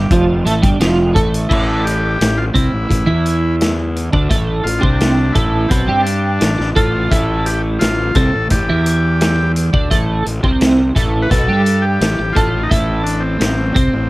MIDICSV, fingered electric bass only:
0, 0, Header, 1, 2, 480
1, 0, Start_track
1, 0, Key_signature, 0, "minor"
1, 0, Tempo, 700117
1, 1030, Time_signature, 4, 2, 24, 8
1, 9664, End_track
2, 0, Start_track
2, 0, Title_t, "Fingered electric bass"
2, 0, Program_c, 0, 33
2, 73, Note_on_c, 0, 29, 91
2, 295, Note_off_c, 0, 29, 0
2, 305, Note_on_c, 0, 33, 91
2, 420, Note_off_c, 0, 33, 0
2, 439, Note_on_c, 0, 31, 87
2, 545, Note_off_c, 0, 31, 0
2, 549, Note_on_c, 0, 29, 86
2, 773, Note_off_c, 0, 29, 0
2, 795, Note_on_c, 0, 33, 82
2, 1016, Note_off_c, 0, 33, 0
2, 1034, Note_on_c, 0, 33, 88
2, 1485, Note_off_c, 0, 33, 0
2, 1516, Note_on_c, 0, 33, 72
2, 1737, Note_off_c, 0, 33, 0
2, 1750, Note_on_c, 0, 36, 80
2, 1862, Note_off_c, 0, 36, 0
2, 1871, Note_on_c, 0, 33, 72
2, 1983, Note_off_c, 0, 33, 0
2, 1993, Note_on_c, 0, 33, 74
2, 2103, Note_off_c, 0, 33, 0
2, 2115, Note_on_c, 0, 40, 85
2, 2806, Note_off_c, 0, 40, 0
2, 2836, Note_on_c, 0, 38, 88
2, 2945, Note_off_c, 0, 38, 0
2, 2954, Note_on_c, 0, 33, 84
2, 3177, Note_off_c, 0, 33, 0
2, 3187, Note_on_c, 0, 33, 72
2, 3301, Note_off_c, 0, 33, 0
2, 3315, Note_on_c, 0, 36, 85
2, 3649, Note_off_c, 0, 36, 0
2, 3673, Note_on_c, 0, 33, 83
2, 3896, Note_off_c, 0, 33, 0
2, 3914, Note_on_c, 0, 35, 89
2, 4025, Note_off_c, 0, 35, 0
2, 4037, Note_on_c, 0, 43, 92
2, 4371, Note_off_c, 0, 43, 0
2, 4401, Note_on_c, 0, 33, 70
2, 4509, Note_off_c, 0, 33, 0
2, 4524, Note_on_c, 0, 33, 75
2, 4631, Note_off_c, 0, 33, 0
2, 4640, Note_on_c, 0, 33, 86
2, 4861, Note_off_c, 0, 33, 0
2, 4881, Note_on_c, 0, 33, 88
2, 5331, Note_off_c, 0, 33, 0
2, 5363, Note_on_c, 0, 33, 72
2, 5582, Note_off_c, 0, 33, 0
2, 5591, Note_on_c, 0, 36, 90
2, 5705, Note_off_c, 0, 36, 0
2, 5724, Note_on_c, 0, 33, 79
2, 5831, Note_off_c, 0, 33, 0
2, 5835, Note_on_c, 0, 33, 81
2, 5947, Note_off_c, 0, 33, 0
2, 5966, Note_on_c, 0, 40, 89
2, 6653, Note_off_c, 0, 40, 0
2, 6676, Note_on_c, 0, 38, 86
2, 6787, Note_off_c, 0, 38, 0
2, 6799, Note_on_c, 0, 33, 84
2, 7021, Note_off_c, 0, 33, 0
2, 7042, Note_on_c, 0, 33, 69
2, 7151, Note_off_c, 0, 33, 0
2, 7156, Note_on_c, 0, 36, 89
2, 7491, Note_off_c, 0, 36, 0
2, 7514, Note_on_c, 0, 33, 83
2, 7738, Note_off_c, 0, 33, 0
2, 7756, Note_on_c, 0, 35, 82
2, 7867, Note_off_c, 0, 35, 0
2, 7870, Note_on_c, 0, 43, 87
2, 8207, Note_off_c, 0, 43, 0
2, 8233, Note_on_c, 0, 33, 72
2, 8346, Note_off_c, 0, 33, 0
2, 8360, Note_on_c, 0, 33, 67
2, 8469, Note_off_c, 0, 33, 0
2, 8479, Note_on_c, 0, 33, 82
2, 8700, Note_off_c, 0, 33, 0
2, 8718, Note_on_c, 0, 33, 85
2, 9169, Note_off_c, 0, 33, 0
2, 9194, Note_on_c, 0, 33, 70
2, 9417, Note_off_c, 0, 33, 0
2, 9433, Note_on_c, 0, 36, 81
2, 9545, Note_off_c, 0, 36, 0
2, 9550, Note_on_c, 0, 33, 72
2, 9663, Note_off_c, 0, 33, 0
2, 9664, End_track
0, 0, End_of_file